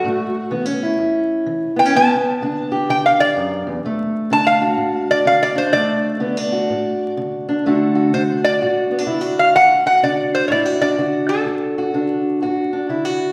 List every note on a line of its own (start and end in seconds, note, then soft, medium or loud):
0.00 0.65 F#4 loud
0.04 0.48 A2 medium
0.04 1.92 A3 medium
0.51 0.95 E3 medium
0.51 0.66 B3 medium
0.66 1.76 C#4 medium
0.83 1.94 E4 medium
0.98 1.43 E2 medium
1.46 1.90 E3 medium
1.76 1.85 B3 medium
1.76 1.94 G5 loud
1.85 1.94 C#4 medium
1.94 2.38 G2 medium
1.94 3.82 B3 medium
1.94 2.87 A5 loud
2.42 2.86 D3 medium
2.42 4.31 D4 medium
2.72 3.82 G4 medium
2.89 3.33 D3 medium
2.89 3.05 G5 loud
3.06 3.20 F5 medium
3.20 3.45 D5 loud
3.36 3.66 F#2 medium
3.67 3.84 E2 medium
3.85 4.28 D2 medium
3.85 5.73 A3 medium
4.31 4.75 D3 medium
4.31 5.55 D4 medium
4.31 4.47 A5 loud
4.47 5.08 F5 loud
4.62 6.52 F#4 medium
4.77 5.22 A2 medium
5.11 5.26 D5 loud
5.26 5.70 D3 medium
5.26 5.42 F5 loud
5.43 5.57 D5 loud
5.55 6.20 D4 medium
5.55 5.73 C5 loud
5.73 6.17 D2 medium
5.73 7.62 A3 medium
5.73 7.12 D5 loud
6.20 6.65 D3 medium
6.20 6.37 B3 medium
6.37 7.47 D4 medium
6.52 7.62 F#4 medium
6.70 7.13 A2 medium
7.17 7.61 D3 medium
7.49 7.63 D4 medium
7.65 8.09 D2 medium
7.65 8.13 D3 medium
7.65 11.16 A3 medium
7.65 8.14 D4 medium
7.65 7.95 F#4 medium
7.95 8.61 F#4 medium
8.13 8.57 D3 medium
8.13 8.90 D4 medium
8.13 8.22 C5 medium
8.44 9.42 D5 medium
8.61 9.05 A2 medium
8.61 9.06 F#4 medium
8.91 8.98 B3 medium
8.98 9.55 D4 medium
9.07 9.51 D3 medium
9.07 9.21 E4 medium
9.21 9.54 F#4 medium
9.39 9.55 F5 medium
9.55 9.99 D2 medium
9.55 9.84 F#5 loud
9.86 10.50 F#4 medium
9.86 10.04 F#5 medium
10.03 10.47 D3 medium
10.03 10.81 D4 medium
10.03 10.34 D5 medium
10.35 10.46 C5 medium
10.48 10.95 A2 medium
10.48 10.65 E4 medium
10.48 10.51 C#5 medium
10.48 10.80 D5 medium
10.65 10.97 F#4 medium
10.81 11.94 D4 medium
10.81 11.31 D5 medium
10.98 11.43 D3 medium
10.98 11.78 F#4 medium
11.29 12.68 A4 medium
11.45 11.90 D2 medium
11.78 12.42 F#4 medium
11.94 12.38 D3 medium
11.94 12.72 D4 medium
12.42 12.86 A2 medium
12.42 12.89 F#4 medium
12.73 13.32 D4 medium
12.89 13.32 D3 medium
12.89 13.05 E4 medium
13.05 13.32 F#4 medium